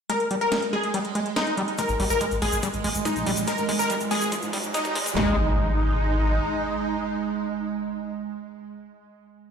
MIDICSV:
0, 0, Header, 1, 8, 480
1, 0, Start_track
1, 0, Tempo, 422535
1, 109, Time_signature, 4, 2, 24, 8
1, 10801, End_track
2, 0, Start_track
2, 0, Title_t, "Supersaw synth"
2, 0, Program_c, 0, 81
2, 109, Note_on_c, 0, 70, 91
2, 294, Note_off_c, 0, 70, 0
2, 468, Note_on_c, 0, 70, 95
2, 654, Note_off_c, 0, 70, 0
2, 828, Note_on_c, 0, 68, 95
2, 1014, Note_off_c, 0, 68, 0
2, 1548, Note_on_c, 0, 63, 94
2, 1796, Note_off_c, 0, 63, 0
2, 2029, Note_on_c, 0, 70, 99
2, 2214, Note_off_c, 0, 70, 0
2, 2389, Note_on_c, 0, 70, 98
2, 2574, Note_off_c, 0, 70, 0
2, 2748, Note_on_c, 0, 68, 98
2, 2934, Note_off_c, 0, 68, 0
2, 3468, Note_on_c, 0, 63, 94
2, 3716, Note_off_c, 0, 63, 0
2, 3949, Note_on_c, 0, 70, 99
2, 4134, Note_off_c, 0, 70, 0
2, 4309, Note_on_c, 0, 70, 97
2, 4494, Note_off_c, 0, 70, 0
2, 4669, Note_on_c, 0, 68, 98
2, 4854, Note_off_c, 0, 68, 0
2, 5389, Note_on_c, 0, 63, 96
2, 5636, Note_off_c, 0, 63, 0
2, 5869, Note_on_c, 0, 63, 104
2, 9311, Note_off_c, 0, 63, 0
2, 10801, End_track
3, 0, Start_track
3, 0, Title_t, "Acid bass"
3, 0, Program_c, 1, 38
3, 108, Note_on_c, 1, 56, 80
3, 140, Note_off_c, 1, 56, 0
3, 348, Note_on_c, 1, 55, 70
3, 402, Note_off_c, 1, 55, 0
3, 588, Note_on_c, 1, 56, 75
3, 642, Note_off_c, 1, 56, 0
3, 828, Note_on_c, 1, 56, 76
3, 860, Note_off_c, 1, 56, 0
3, 1068, Note_on_c, 1, 55, 85
3, 1122, Note_off_c, 1, 55, 0
3, 1308, Note_on_c, 1, 56, 76
3, 1362, Note_off_c, 1, 56, 0
3, 1548, Note_on_c, 1, 56, 80
3, 1580, Note_off_c, 1, 56, 0
3, 1788, Note_on_c, 1, 55, 79
3, 1842, Note_off_c, 1, 55, 0
3, 2028, Note_on_c, 1, 56, 80
3, 2060, Note_off_c, 1, 56, 0
3, 2268, Note_on_c, 1, 55, 76
3, 2322, Note_off_c, 1, 55, 0
3, 2509, Note_on_c, 1, 56, 76
3, 2562, Note_off_c, 1, 56, 0
3, 2748, Note_on_c, 1, 56, 77
3, 2780, Note_off_c, 1, 56, 0
3, 2988, Note_on_c, 1, 55, 85
3, 3042, Note_off_c, 1, 55, 0
3, 3228, Note_on_c, 1, 56, 77
3, 3282, Note_off_c, 1, 56, 0
3, 3468, Note_on_c, 1, 56, 83
3, 3500, Note_off_c, 1, 56, 0
3, 3708, Note_on_c, 1, 55, 78
3, 3762, Note_off_c, 1, 55, 0
3, 3948, Note_on_c, 1, 56, 84
3, 4002, Note_off_c, 1, 56, 0
3, 4188, Note_on_c, 1, 56, 73
3, 4220, Note_off_c, 1, 56, 0
3, 4428, Note_on_c, 1, 55, 82
3, 4482, Note_off_c, 1, 55, 0
3, 4668, Note_on_c, 1, 56, 77
3, 4722, Note_off_c, 1, 56, 0
3, 4909, Note_on_c, 1, 56, 85
3, 4941, Note_off_c, 1, 56, 0
3, 5148, Note_on_c, 1, 55, 80
3, 5202, Note_off_c, 1, 55, 0
3, 5389, Note_on_c, 1, 56, 81
3, 5442, Note_off_c, 1, 56, 0
3, 5629, Note_on_c, 1, 56, 76
3, 5661, Note_off_c, 1, 56, 0
3, 5869, Note_on_c, 1, 56, 96
3, 6092, Note_off_c, 1, 56, 0
3, 10801, End_track
4, 0, Start_track
4, 0, Title_t, "Ambient pad"
4, 0, Program_c, 2, 92
4, 108, Note_on_c, 2, 56, 78
4, 2014, Note_off_c, 2, 56, 0
4, 2028, Note_on_c, 2, 56, 75
4, 5855, Note_off_c, 2, 56, 0
4, 5869, Note_on_c, 2, 56, 83
4, 9311, Note_off_c, 2, 56, 0
4, 10801, End_track
5, 0, Start_track
5, 0, Title_t, "Analog synth bass"
5, 0, Program_c, 3, 38
5, 2149, Note_on_c, 3, 32, 86
5, 2232, Note_off_c, 3, 32, 0
5, 2269, Note_on_c, 3, 32, 98
5, 2352, Note_off_c, 3, 32, 0
5, 2389, Note_on_c, 3, 32, 94
5, 2472, Note_off_c, 3, 32, 0
5, 2629, Note_on_c, 3, 32, 85
5, 2712, Note_off_c, 3, 32, 0
5, 2749, Note_on_c, 3, 32, 100
5, 2832, Note_off_c, 3, 32, 0
5, 2869, Note_on_c, 3, 32, 91
5, 2952, Note_off_c, 3, 32, 0
5, 3109, Note_on_c, 3, 32, 85
5, 3192, Note_off_c, 3, 32, 0
5, 3229, Note_on_c, 3, 32, 94
5, 3312, Note_off_c, 3, 32, 0
5, 3348, Note_on_c, 3, 32, 91
5, 3432, Note_off_c, 3, 32, 0
5, 3588, Note_on_c, 3, 34, 86
5, 3671, Note_off_c, 3, 34, 0
5, 3708, Note_on_c, 3, 34, 99
5, 3792, Note_off_c, 3, 34, 0
5, 3828, Note_on_c, 3, 34, 91
5, 3912, Note_off_c, 3, 34, 0
5, 4068, Note_on_c, 3, 32, 85
5, 4151, Note_off_c, 3, 32, 0
5, 4188, Note_on_c, 3, 32, 103
5, 4271, Note_off_c, 3, 32, 0
5, 4308, Note_on_c, 3, 32, 94
5, 4392, Note_off_c, 3, 32, 0
5, 4548, Note_on_c, 3, 32, 85
5, 4631, Note_off_c, 3, 32, 0
5, 4668, Note_on_c, 3, 32, 99
5, 4751, Note_off_c, 3, 32, 0
5, 4788, Note_on_c, 3, 32, 91
5, 4872, Note_off_c, 3, 32, 0
5, 5028, Note_on_c, 3, 44, 87
5, 5112, Note_off_c, 3, 44, 0
5, 5149, Note_on_c, 3, 44, 94
5, 5232, Note_off_c, 3, 44, 0
5, 5269, Note_on_c, 3, 44, 98
5, 5352, Note_off_c, 3, 44, 0
5, 5509, Note_on_c, 3, 32, 89
5, 5592, Note_off_c, 3, 32, 0
5, 5628, Note_on_c, 3, 32, 98
5, 5712, Note_off_c, 3, 32, 0
5, 5749, Note_on_c, 3, 32, 92
5, 5832, Note_off_c, 3, 32, 0
5, 5869, Note_on_c, 3, 32, 101
5, 7263, Note_off_c, 3, 32, 0
5, 10801, End_track
6, 0, Start_track
6, 0, Title_t, "Impact"
6, 0, Program_c, 4, 103
6, 5868, Note_on_c, 4, 60, 69
6, 9356, Note_off_c, 4, 60, 0
6, 10801, End_track
7, 0, Start_track
7, 0, Title_t, "Riser"
7, 0, Program_c, 5, 103
7, 2028, Note_on_c, 5, 60, 80
7, 5868, Note_off_c, 5, 60, 0
7, 10801, End_track
8, 0, Start_track
8, 0, Title_t, "Drums"
8, 108, Note_on_c, 9, 42, 97
8, 222, Note_off_c, 9, 42, 0
8, 228, Note_on_c, 9, 42, 38
8, 342, Note_off_c, 9, 42, 0
8, 348, Note_on_c, 9, 42, 70
8, 462, Note_off_c, 9, 42, 0
8, 469, Note_on_c, 9, 42, 39
8, 582, Note_off_c, 9, 42, 0
8, 588, Note_on_c, 9, 38, 121
8, 588, Note_on_c, 9, 42, 95
8, 702, Note_off_c, 9, 38, 0
8, 702, Note_off_c, 9, 42, 0
8, 708, Note_on_c, 9, 42, 40
8, 822, Note_off_c, 9, 42, 0
8, 948, Note_on_c, 9, 42, 40
8, 1062, Note_off_c, 9, 42, 0
8, 1068, Note_on_c, 9, 42, 95
8, 1182, Note_off_c, 9, 42, 0
8, 1189, Note_on_c, 9, 42, 40
8, 1302, Note_off_c, 9, 42, 0
8, 1309, Note_on_c, 9, 42, 73
8, 1422, Note_off_c, 9, 42, 0
8, 1429, Note_on_c, 9, 42, 41
8, 1542, Note_off_c, 9, 42, 0
8, 1548, Note_on_c, 9, 38, 124
8, 1548, Note_on_c, 9, 42, 96
8, 1662, Note_off_c, 9, 38, 0
8, 1662, Note_off_c, 9, 42, 0
8, 1669, Note_on_c, 9, 42, 38
8, 1782, Note_off_c, 9, 42, 0
8, 1789, Note_on_c, 9, 42, 67
8, 1902, Note_off_c, 9, 42, 0
8, 1908, Note_on_c, 9, 42, 40
8, 2022, Note_off_c, 9, 42, 0
8, 2024, Note_on_c, 9, 82, 71
8, 2028, Note_on_c, 9, 36, 117
8, 2028, Note_on_c, 9, 42, 98
8, 2137, Note_off_c, 9, 82, 0
8, 2140, Note_on_c, 9, 82, 40
8, 2142, Note_off_c, 9, 36, 0
8, 2142, Note_off_c, 9, 42, 0
8, 2148, Note_on_c, 9, 42, 40
8, 2254, Note_off_c, 9, 82, 0
8, 2262, Note_off_c, 9, 42, 0
8, 2268, Note_on_c, 9, 46, 101
8, 2382, Note_off_c, 9, 46, 0
8, 2386, Note_on_c, 9, 82, 75
8, 2500, Note_off_c, 9, 82, 0
8, 2506, Note_on_c, 9, 82, 63
8, 2508, Note_on_c, 9, 42, 94
8, 2509, Note_on_c, 9, 36, 118
8, 2620, Note_off_c, 9, 82, 0
8, 2622, Note_off_c, 9, 36, 0
8, 2622, Note_off_c, 9, 42, 0
8, 2628, Note_on_c, 9, 42, 44
8, 2628, Note_on_c, 9, 82, 39
8, 2742, Note_off_c, 9, 42, 0
8, 2742, Note_off_c, 9, 82, 0
8, 2748, Note_on_c, 9, 46, 104
8, 2862, Note_off_c, 9, 46, 0
8, 2868, Note_on_c, 9, 82, 82
8, 2869, Note_on_c, 9, 42, 41
8, 2981, Note_off_c, 9, 82, 0
8, 2982, Note_off_c, 9, 42, 0
8, 2985, Note_on_c, 9, 82, 65
8, 2988, Note_on_c, 9, 36, 115
8, 2988, Note_on_c, 9, 42, 96
8, 3098, Note_off_c, 9, 82, 0
8, 3102, Note_off_c, 9, 36, 0
8, 3102, Note_off_c, 9, 42, 0
8, 3105, Note_on_c, 9, 82, 40
8, 3109, Note_on_c, 9, 42, 42
8, 3218, Note_off_c, 9, 82, 0
8, 3222, Note_off_c, 9, 42, 0
8, 3229, Note_on_c, 9, 46, 113
8, 3342, Note_off_c, 9, 46, 0
8, 3347, Note_on_c, 9, 82, 69
8, 3349, Note_on_c, 9, 42, 41
8, 3461, Note_off_c, 9, 82, 0
8, 3462, Note_off_c, 9, 42, 0
8, 3469, Note_on_c, 9, 36, 122
8, 3469, Note_on_c, 9, 42, 92
8, 3474, Note_on_c, 9, 82, 74
8, 3582, Note_off_c, 9, 36, 0
8, 3582, Note_off_c, 9, 42, 0
8, 3587, Note_off_c, 9, 82, 0
8, 3589, Note_on_c, 9, 42, 39
8, 3592, Note_on_c, 9, 82, 42
8, 3702, Note_off_c, 9, 42, 0
8, 3706, Note_off_c, 9, 82, 0
8, 3708, Note_on_c, 9, 46, 108
8, 3822, Note_off_c, 9, 46, 0
8, 3825, Note_on_c, 9, 82, 84
8, 3829, Note_on_c, 9, 42, 42
8, 3938, Note_off_c, 9, 82, 0
8, 3942, Note_off_c, 9, 42, 0
8, 3948, Note_on_c, 9, 82, 67
8, 3949, Note_on_c, 9, 36, 106
8, 3949, Note_on_c, 9, 42, 98
8, 4062, Note_off_c, 9, 36, 0
8, 4062, Note_off_c, 9, 42, 0
8, 4062, Note_off_c, 9, 82, 0
8, 4062, Note_on_c, 9, 82, 44
8, 4069, Note_on_c, 9, 42, 39
8, 4176, Note_off_c, 9, 82, 0
8, 4182, Note_off_c, 9, 42, 0
8, 4188, Note_on_c, 9, 46, 113
8, 4302, Note_off_c, 9, 46, 0
8, 4309, Note_on_c, 9, 42, 39
8, 4310, Note_on_c, 9, 82, 73
8, 4422, Note_off_c, 9, 42, 0
8, 4424, Note_off_c, 9, 82, 0
8, 4428, Note_on_c, 9, 36, 110
8, 4428, Note_on_c, 9, 42, 91
8, 4436, Note_on_c, 9, 82, 74
8, 4542, Note_off_c, 9, 36, 0
8, 4542, Note_off_c, 9, 42, 0
8, 4546, Note_off_c, 9, 82, 0
8, 4546, Note_on_c, 9, 82, 43
8, 4548, Note_on_c, 9, 42, 41
8, 4659, Note_off_c, 9, 82, 0
8, 4662, Note_off_c, 9, 42, 0
8, 4668, Note_on_c, 9, 46, 104
8, 4782, Note_off_c, 9, 46, 0
8, 4787, Note_on_c, 9, 82, 75
8, 4789, Note_on_c, 9, 42, 40
8, 4900, Note_off_c, 9, 82, 0
8, 4902, Note_off_c, 9, 42, 0
8, 4908, Note_on_c, 9, 36, 103
8, 4908, Note_on_c, 9, 42, 98
8, 4911, Note_on_c, 9, 82, 69
8, 5022, Note_off_c, 9, 36, 0
8, 5022, Note_off_c, 9, 42, 0
8, 5023, Note_off_c, 9, 82, 0
8, 5023, Note_on_c, 9, 82, 40
8, 5028, Note_on_c, 9, 42, 40
8, 5137, Note_off_c, 9, 82, 0
8, 5142, Note_off_c, 9, 42, 0
8, 5148, Note_on_c, 9, 36, 101
8, 5148, Note_on_c, 9, 46, 117
8, 5262, Note_off_c, 9, 36, 0
8, 5262, Note_off_c, 9, 46, 0
8, 5262, Note_on_c, 9, 82, 72
8, 5268, Note_on_c, 9, 42, 40
8, 5376, Note_off_c, 9, 82, 0
8, 5382, Note_off_c, 9, 42, 0
8, 5388, Note_on_c, 9, 42, 96
8, 5389, Note_on_c, 9, 36, 104
8, 5391, Note_on_c, 9, 82, 69
8, 5502, Note_off_c, 9, 36, 0
8, 5502, Note_off_c, 9, 42, 0
8, 5505, Note_off_c, 9, 82, 0
8, 5505, Note_on_c, 9, 82, 45
8, 5508, Note_on_c, 9, 36, 95
8, 5508, Note_on_c, 9, 42, 40
8, 5618, Note_off_c, 9, 82, 0
8, 5622, Note_off_c, 9, 36, 0
8, 5622, Note_off_c, 9, 42, 0
8, 5628, Note_on_c, 9, 36, 105
8, 5629, Note_on_c, 9, 46, 116
8, 5742, Note_off_c, 9, 36, 0
8, 5742, Note_off_c, 9, 46, 0
8, 5749, Note_on_c, 9, 36, 90
8, 5749, Note_on_c, 9, 42, 42
8, 5758, Note_on_c, 9, 82, 87
8, 5862, Note_off_c, 9, 36, 0
8, 5862, Note_off_c, 9, 42, 0
8, 5868, Note_on_c, 9, 38, 100
8, 5868, Note_on_c, 9, 39, 88
8, 5871, Note_off_c, 9, 82, 0
8, 5982, Note_off_c, 9, 38, 0
8, 5982, Note_off_c, 9, 39, 0
8, 10801, End_track
0, 0, End_of_file